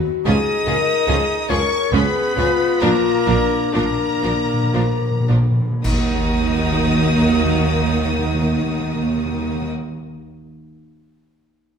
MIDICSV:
0, 0, Header, 1, 11, 480
1, 0, Start_track
1, 0, Key_signature, -6, "minor"
1, 0, Tempo, 829876
1, 154, Time_signature, 3, 2, 24, 8
1, 1119, Tempo, 906344
1, 2079, Tempo, 996678
1, 2559, Tempo, 1086957
1, 4479, Tempo, 1067616
1, 5689, End_track
2, 0, Start_track
2, 0, Title_t, "Violin section"
2, 0, Program_c, 0, 48
2, 155, Note_on_c, 0, 87, 127
2, 846, Note_off_c, 0, 87, 0
2, 868, Note_on_c, 0, 85, 127
2, 1118, Note_on_c, 0, 83, 127
2, 1119, Note_off_c, 0, 85, 0
2, 1579, Note_off_c, 0, 83, 0
2, 1585, Note_on_c, 0, 82, 127
2, 2072, Note_off_c, 0, 82, 0
2, 2079, Note_on_c, 0, 82, 127
2, 2786, Note_off_c, 0, 82, 0
2, 3044, Note_on_c, 0, 87, 121
2, 4747, Note_off_c, 0, 87, 0
2, 5689, End_track
3, 0, Start_track
3, 0, Title_t, "Flute"
3, 0, Program_c, 1, 73
3, 145, Note_on_c, 1, 75, 127
3, 862, Note_on_c, 1, 73, 101
3, 871, Note_off_c, 1, 75, 0
3, 1117, Note_on_c, 1, 71, 127
3, 1125, Note_off_c, 1, 73, 0
3, 1586, Note_off_c, 1, 71, 0
3, 1589, Note_on_c, 1, 70, 127
3, 2069, Note_off_c, 1, 70, 0
3, 2086, Note_on_c, 1, 70, 106
3, 2790, Note_off_c, 1, 70, 0
3, 3046, Note_on_c, 1, 75, 104
3, 4749, Note_off_c, 1, 75, 0
3, 5689, End_track
4, 0, Start_track
4, 0, Title_t, "French horn section"
4, 0, Program_c, 2, 60
4, 0, Note_on_c, 2, 66, 104
4, 149, Note_on_c, 2, 68, 127
4, 151, Note_off_c, 2, 66, 0
4, 385, Note_off_c, 2, 68, 0
4, 392, Note_on_c, 2, 70, 117
4, 623, Note_on_c, 2, 68, 123
4, 627, Note_off_c, 2, 70, 0
4, 793, Note_off_c, 2, 68, 0
4, 867, Note_on_c, 2, 70, 119
4, 1113, Note_off_c, 2, 70, 0
4, 1120, Note_on_c, 2, 68, 112
4, 1347, Note_on_c, 2, 65, 112
4, 1353, Note_off_c, 2, 68, 0
4, 1580, Note_off_c, 2, 65, 0
4, 1586, Note_on_c, 2, 65, 126
4, 1823, Note_on_c, 2, 62, 111
4, 1828, Note_off_c, 2, 65, 0
4, 2556, Note_off_c, 2, 62, 0
4, 2560, Note_on_c, 2, 70, 91
4, 2801, Note_off_c, 2, 70, 0
4, 3051, Note_on_c, 2, 54, 114
4, 3053, Note_on_c, 2, 58, 111
4, 4755, Note_off_c, 2, 54, 0
4, 4757, Note_off_c, 2, 58, 0
4, 5689, End_track
5, 0, Start_track
5, 0, Title_t, "Violin section"
5, 0, Program_c, 3, 48
5, 152, Note_on_c, 3, 65, 96
5, 152, Note_on_c, 3, 68, 91
5, 198, Note_off_c, 3, 65, 0
5, 199, Note_off_c, 3, 68, 0
5, 384, Note_on_c, 3, 65, 94
5, 384, Note_on_c, 3, 68, 91
5, 430, Note_off_c, 3, 65, 0
5, 430, Note_off_c, 3, 68, 0
5, 619, Note_on_c, 3, 65, 90
5, 620, Note_on_c, 3, 68, 99
5, 665, Note_off_c, 3, 65, 0
5, 667, Note_off_c, 3, 68, 0
5, 863, Note_on_c, 3, 65, 96
5, 866, Note_on_c, 3, 68, 102
5, 910, Note_off_c, 3, 65, 0
5, 912, Note_off_c, 3, 68, 0
5, 1118, Note_on_c, 3, 65, 93
5, 1121, Note_on_c, 3, 68, 96
5, 1161, Note_off_c, 3, 65, 0
5, 1163, Note_off_c, 3, 68, 0
5, 1352, Note_on_c, 3, 65, 91
5, 1354, Note_on_c, 3, 68, 104
5, 1394, Note_off_c, 3, 65, 0
5, 1396, Note_off_c, 3, 68, 0
5, 1582, Note_on_c, 3, 65, 102
5, 1583, Note_on_c, 3, 70, 105
5, 1624, Note_off_c, 3, 65, 0
5, 1625, Note_off_c, 3, 70, 0
5, 1827, Note_on_c, 3, 65, 87
5, 1829, Note_on_c, 3, 70, 83
5, 1869, Note_off_c, 3, 65, 0
5, 1872, Note_off_c, 3, 70, 0
5, 2078, Note_on_c, 3, 65, 89
5, 2079, Note_on_c, 3, 70, 85
5, 2116, Note_off_c, 3, 65, 0
5, 2118, Note_off_c, 3, 70, 0
5, 2313, Note_on_c, 3, 65, 82
5, 2314, Note_on_c, 3, 70, 92
5, 2352, Note_off_c, 3, 65, 0
5, 2353, Note_off_c, 3, 70, 0
5, 2557, Note_on_c, 3, 65, 82
5, 2557, Note_on_c, 3, 70, 80
5, 2592, Note_off_c, 3, 65, 0
5, 2593, Note_off_c, 3, 70, 0
5, 2799, Note_on_c, 3, 65, 66
5, 2799, Note_on_c, 3, 70, 77
5, 2835, Note_off_c, 3, 65, 0
5, 2835, Note_off_c, 3, 70, 0
5, 3042, Note_on_c, 3, 70, 88
5, 3044, Note_on_c, 3, 66, 93
5, 4745, Note_off_c, 3, 70, 0
5, 4747, Note_off_c, 3, 66, 0
5, 5689, End_track
6, 0, Start_track
6, 0, Title_t, "Cor anglais"
6, 0, Program_c, 4, 69
6, 145, Note_on_c, 4, 63, 127
6, 866, Note_on_c, 4, 61, 112
6, 874, Note_off_c, 4, 63, 0
6, 1110, Note_on_c, 4, 59, 115
6, 1118, Note_off_c, 4, 61, 0
6, 1584, Note_on_c, 4, 58, 127
6, 1592, Note_off_c, 4, 59, 0
6, 2070, Note_off_c, 4, 58, 0
6, 2074, Note_on_c, 4, 58, 111
6, 2784, Note_off_c, 4, 58, 0
6, 3041, Note_on_c, 4, 63, 93
6, 4744, Note_off_c, 4, 63, 0
6, 5689, End_track
7, 0, Start_track
7, 0, Title_t, "Viola section"
7, 0, Program_c, 5, 48
7, 147, Note_on_c, 5, 53, 103
7, 147, Note_on_c, 5, 61, 108
7, 193, Note_off_c, 5, 53, 0
7, 193, Note_off_c, 5, 61, 0
7, 384, Note_on_c, 5, 53, 78
7, 384, Note_on_c, 5, 61, 83
7, 430, Note_off_c, 5, 53, 0
7, 430, Note_off_c, 5, 61, 0
7, 622, Note_on_c, 5, 53, 96
7, 622, Note_on_c, 5, 61, 102
7, 668, Note_off_c, 5, 53, 0
7, 668, Note_off_c, 5, 61, 0
7, 858, Note_on_c, 5, 61, 87
7, 859, Note_on_c, 5, 53, 99
7, 904, Note_off_c, 5, 61, 0
7, 906, Note_off_c, 5, 53, 0
7, 1110, Note_on_c, 5, 53, 98
7, 1111, Note_on_c, 5, 61, 113
7, 1154, Note_off_c, 5, 53, 0
7, 1154, Note_off_c, 5, 61, 0
7, 1343, Note_on_c, 5, 53, 85
7, 1343, Note_on_c, 5, 61, 94
7, 1385, Note_off_c, 5, 53, 0
7, 1385, Note_off_c, 5, 61, 0
7, 1587, Note_on_c, 5, 53, 101
7, 1587, Note_on_c, 5, 62, 119
7, 1629, Note_off_c, 5, 53, 0
7, 1630, Note_off_c, 5, 62, 0
7, 1821, Note_on_c, 5, 62, 82
7, 1823, Note_on_c, 5, 53, 94
7, 1864, Note_off_c, 5, 62, 0
7, 1866, Note_off_c, 5, 53, 0
7, 2071, Note_on_c, 5, 53, 99
7, 2072, Note_on_c, 5, 62, 100
7, 2110, Note_off_c, 5, 53, 0
7, 2111, Note_off_c, 5, 62, 0
7, 2311, Note_on_c, 5, 53, 82
7, 2311, Note_on_c, 5, 62, 83
7, 2349, Note_off_c, 5, 53, 0
7, 2350, Note_off_c, 5, 62, 0
7, 2554, Note_on_c, 5, 53, 85
7, 2555, Note_on_c, 5, 62, 84
7, 2590, Note_off_c, 5, 53, 0
7, 2591, Note_off_c, 5, 62, 0
7, 2796, Note_on_c, 5, 62, 75
7, 2798, Note_on_c, 5, 53, 73
7, 2832, Note_off_c, 5, 62, 0
7, 2833, Note_off_c, 5, 53, 0
7, 3041, Note_on_c, 5, 51, 89
7, 3043, Note_on_c, 5, 63, 96
7, 4744, Note_off_c, 5, 51, 0
7, 4746, Note_off_c, 5, 63, 0
7, 5689, End_track
8, 0, Start_track
8, 0, Title_t, "Timpani"
8, 0, Program_c, 6, 47
8, 1632, Note_on_c, 6, 46, 53
8, 1667, Note_off_c, 6, 46, 0
8, 1673, Note_on_c, 6, 46, 49
8, 1712, Note_off_c, 6, 46, 0
8, 1719, Note_on_c, 6, 46, 53
8, 1752, Note_off_c, 6, 46, 0
8, 1759, Note_on_c, 6, 46, 52
8, 1796, Note_off_c, 6, 46, 0
8, 1802, Note_on_c, 6, 46, 52
8, 1838, Note_off_c, 6, 46, 0
8, 1844, Note_on_c, 6, 46, 48
8, 1888, Note_off_c, 6, 46, 0
8, 1934, Note_on_c, 6, 46, 53
8, 1974, Note_off_c, 6, 46, 0
8, 1980, Note_on_c, 6, 46, 55
8, 2018, Note_off_c, 6, 46, 0
8, 2025, Note_on_c, 6, 46, 63
8, 2064, Note_off_c, 6, 46, 0
8, 2071, Note_on_c, 6, 46, 66
8, 2109, Note_off_c, 6, 46, 0
8, 2115, Note_on_c, 6, 46, 76
8, 2149, Note_off_c, 6, 46, 0
8, 2155, Note_on_c, 6, 46, 74
8, 2188, Note_off_c, 6, 46, 0
8, 2194, Note_on_c, 6, 46, 68
8, 2233, Note_off_c, 6, 46, 0
8, 2239, Note_on_c, 6, 46, 73
8, 2276, Note_off_c, 6, 46, 0
8, 2282, Note_on_c, 6, 46, 70
8, 2323, Note_off_c, 6, 46, 0
8, 2329, Note_on_c, 6, 46, 82
8, 2363, Note_off_c, 6, 46, 0
8, 2369, Note_on_c, 6, 46, 90
8, 2411, Note_off_c, 6, 46, 0
8, 2418, Note_on_c, 6, 46, 95
8, 2453, Note_off_c, 6, 46, 0
8, 2459, Note_on_c, 6, 46, 104
8, 2499, Note_off_c, 6, 46, 0
8, 2504, Note_on_c, 6, 46, 102
8, 2542, Note_off_c, 6, 46, 0
8, 2547, Note_on_c, 6, 46, 112
8, 2584, Note_off_c, 6, 46, 0
8, 2589, Note_on_c, 6, 46, 85
8, 2630, Note_off_c, 6, 46, 0
8, 2636, Note_on_c, 6, 46, 91
8, 2675, Note_off_c, 6, 46, 0
8, 2680, Note_on_c, 6, 46, 107
8, 2716, Note_off_c, 6, 46, 0
8, 2721, Note_on_c, 6, 46, 101
8, 2757, Note_off_c, 6, 46, 0
8, 2762, Note_on_c, 6, 46, 110
8, 2801, Note_off_c, 6, 46, 0
8, 2807, Note_on_c, 6, 46, 116
8, 2845, Note_off_c, 6, 46, 0
8, 2851, Note_on_c, 6, 46, 112
8, 2894, Note_off_c, 6, 46, 0
8, 2900, Note_on_c, 6, 46, 101
8, 2937, Note_off_c, 6, 46, 0
8, 2942, Note_on_c, 6, 46, 107
8, 2980, Note_off_c, 6, 46, 0
8, 2985, Note_on_c, 6, 46, 110
8, 3026, Note_off_c, 6, 46, 0
8, 3044, Note_on_c, 6, 51, 92
8, 3076, Note_off_c, 6, 51, 0
8, 3076, Note_on_c, 6, 51, 79
8, 3108, Note_off_c, 6, 51, 0
8, 3108, Note_on_c, 6, 51, 89
8, 3139, Note_off_c, 6, 51, 0
8, 3139, Note_on_c, 6, 51, 84
8, 3170, Note_off_c, 6, 51, 0
8, 3170, Note_on_c, 6, 51, 94
8, 3202, Note_off_c, 6, 51, 0
8, 3202, Note_on_c, 6, 51, 89
8, 3234, Note_off_c, 6, 51, 0
8, 3234, Note_on_c, 6, 51, 85
8, 3266, Note_off_c, 6, 51, 0
8, 3267, Note_on_c, 6, 51, 75
8, 3299, Note_off_c, 6, 51, 0
8, 3300, Note_on_c, 6, 51, 96
8, 3331, Note_off_c, 6, 51, 0
8, 3331, Note_on_c, 6, 51, 87
8, 3363, Note_off_c, 6, 51, 0
8, 3365, Note_on_c, 6, 51, 89
8, 3397, Note_off_c, 6, 51, 0
8, 3398, Note_on_c, 6, 51, 76
8, 3431, Note_off_c, 6, 51, 0
8, 3432, Note_on_c, 6, 51, 94
8, 3464, Note_off_c, 6, 51, 0
8, 3464, Note_on_c, 6, 51, 86
8, 3495, Note_off_c, 6, 51, 0
8, 3495, Note_on_c, 6, 51, 86
8, 3528, Note_off_c, 6, 51, 0
8, 3529, Note_on_c, 6, 51, 75
8, 3560, Note_off_c, 6, 51, 0
8, 3560, Note_on_c, 6, 51, 95
8, 3592, Note_off_c, 6, 51, 0
8, 3594, Note_on_c, 6, 51, 83
8, 3624, Note_off_c, 6, 51, 0
8, 3624, Note_on_c, 6, 51, 83
8, 3656, Note_off_c, 6, 51, 0
8, 3656, Note_on_c, 6, 51, 77
8, 3688, Note_off_c, 6, 51, 0
8, 3689, Note_on_c, 6, 51, 81
8, 3721, Note_off_c, 6, 51, 0
8, 3723, Note_on_c, 6, 51, 74
8, 3754, Note_off_c, 6, 51, 0
8, 3754, Note_on_c, 6, 51, 88
8, 3787, Note_off_c, 6, 51, 0
8, 3787, Note_on_c, 6, 51, 84
8, 3819, Note_off_c, 6, 51, 0
8, 3819, Note_on_c, 6, 51, 100
8, 3851, Note_off_c, 6, 51, 0
8, 3851, Note_on_c, 6, 51, 84
8, 3883, Note_off_c, 6, 51, 0
8, 3885, Note_on_c, 6, 51, 81
8, 3917, Note_off_c, 6, 51, 0
8, 3919, Note_on_c, 6, 51, 78
8, 3951, Note_off_c, 6, 51, 0
8, 3951, Note_on_c, 6, 51, 90
8, 3984, Note_off_c, 6, 51, 0
8, 3985, Note_on_c, 6, 51, 82
8, 4015, Note_off_c, 6, 51, 0
8, 4015, Note_on_c, 6, 51, 92
8, 4047, Note_off_c, 6, 51, 0
8, 4047, Note_on_c, 6, 51, 77
8, 4079, Note_off_c, 6, 51, 0
8, 4080, Note_on_c, 6, 51, 89
8, 4112, Note_off_c, 6, 51, 0
8, 4113, Note_on_c, 6, 51, 75
8, 4146, Note_off_c, 6, 51, 0
8, 4150, Note_on_c, 6, 51, 92
8, 4182, Note_off_c, 6, 51, 0
8, 4184, Note_on_c, 6, 51, 83
8, 4216, Note_off_c, 6, 51, 0
8, 4218, Note_on_c, 6, 51, 86
8, 4250, Note_off_c, 6, 51, 0
8, 4251, Note_on_c, 6, 51, 75
8, 4282, Note_off_c, 6, 51, 0
8, 4282, Note_on_c, 6, 51, 91
8, 4314, Note_off_c, 6, 51, 0
8, 4316, Note_on_c, 6, 51, 77
8, 4348, Note_off_c, 6, 51, 0
8, 4349, Note_on_c, 6, 51, 81
8, 4381, Note_off_c, 6, 51, 0
8, 4381, Note_on_c, 6, 51, 69
8, 4413, Note_off_c, 6, 51, 0
8, 4416, Note_on_c, 6, 51, 82
8, 4446, Note_off_c, 6, 51, 0
8, 4446, Note_on_c, 6, 51, 77
8, 4478, Note_off_c, 6, 51, 0
8, 4480, Note_on_c, 6, 51, 84
8, 4512, Note_off_c, 6, 51, 0
8, 4516, Note_on_c, 6, 51, 79
8, 4549, Note_off_c, 6, 51, 0
8, 4552, Note_on_c, 6, 51, 87
8, 4585, Note_off_c, 6, 51, 0
8, 4585, Note_on_c, 6, 51, 84
8, 4617, Note_off_c, 6, 51, 0
8, 4618, Note_on_c, 6, 51, 88
8, 4651, Note_off_c, 6, 51, 0
8, 4652, Note_on_c, 6, 51, 84
8, 4685, Note_off_c, 6, 51, 0
8, 4685, Note_on_c, 6, 51, 89
8, 4716, Note_off_c, 6, 51, 0
8, 4716, Note_on_c, 6, 51, 85
8, 4749, Note_off_c, 6, 51, 0
8, 5689, End_track
9, 0, Start_track
9, 0, Title_t, "Cello section"
9, 0, Program_c, 7, 48
9, 149, Note_on_c, 7, 37, 120
9, 195, Note_off_c, 7, 37, 0
9, 386, Note_on_c, 7, 37, 102
9, 432, Note_off_c, 7, 37, 0
9, 628, Note_on_c, 7, 37, 109
9, 674, Note_off_c, 7, 37, 0
9, 869, Note_on_c, 7, 37, 99
9, 916, Note_off_c, 7, 37, 0
9, 1118, Note_on_c, 7, 37, 111
9, 1161, Note_off_c, 7, 37, 0
9, 1357, Note_on_c, 7, 37, 95
9, 1399, Note_off_c, 7, 37, 0
9, 1589, Note_on_c, 7, 46, 109
9, 1632, Note_off_c, 7, 46, 0
9, 1828, Note_on_c, 7, 46, 108
9, 1871, Note_off_c, 7, 46, 0
9, 2078, Note_on_c, 7, 46, 91
9, 2116, Note_off_c, 7, 46, 0
9, 2312, Note_on_c, 7, 46, 83
9, 2351, Note_off_c, 7, 46, 0
9, 2560, Note_on_c, 7, 46, 95
9, 2596, Note_off_c, 7, 46, 0
9, 2799, Note_on_c, 7, 46, 82
9, 2835, Note_off_c, 7, 46, 0
9, 3042, Note_on_c, 7, 39, 95
9, 4746, Note_off_c, 7, 39, 0
9, 5689, End_track
10, 0, Start_track
10, 0, Title_t, "Double bass section"
10, 0, Program_c, 8, 48
10, 154, Note_on_c, 8, 37, 112
10, 200, Note_off_c, 8, 37, 0
10, 385, Note_on_c, 8, 37, 104
10, 431, Note_off_c, 8, 37, 0
10, 622, Note_on_c, 8, 37, 111
10, 669, Note_off_c, 8, 37, 0
10, 869, Note_on_c, 8, 37, 104
10, 915, Note_off_c, 8, 37, 0
10, 1114, Note_on_c, 8, 37, 115
10, 1156, Note_off_c, 8, 37, 0
10, 1353, Note_on_c, 8, 37, 109
10, 1395, Note_off_c, 8, 37, 0
10, 1590, Note_on_c, 8, 34, 116
10, 1632, Note_off_c, 8, 34, 0
10, 1827, Note_on_c, 8, 34, 104
10, 1870, Note_off_c, 8, 34, 0
10, 2077, Note_on_c, 8, 34, 99
10, 2116, Note_off_c, 8, 34, 0
10, 2313, Note_on_c, 8, 34, 91
10, 2351, Note_off_c, 8, 34, 0
10, 2559, Note_on_c, 8, 34, 77
10, 2594, Note_off_c, 8, 34, 0
10, 2800, Note_on_c, 8, 34, 82
10, 2835, Note_off_c, 8, 34, 0
10, 3042, Note_on_c, 8, 39, 101
10, 4745, Note_off_c, 8, 39, 0
10, 5689, End_track
11, 0, Start_track
11, 0, Title_t, "Drums"
11, 3045, Note_on_c, 9, 35, 82
11, 3045, Note_on_c, 9, 49, 87
11, 3089, Note_off_c, 9, 35, 0
11, 3089, Note_off_c, 9, 49, 0
11, 5689, End_track
0, 0, End_of_file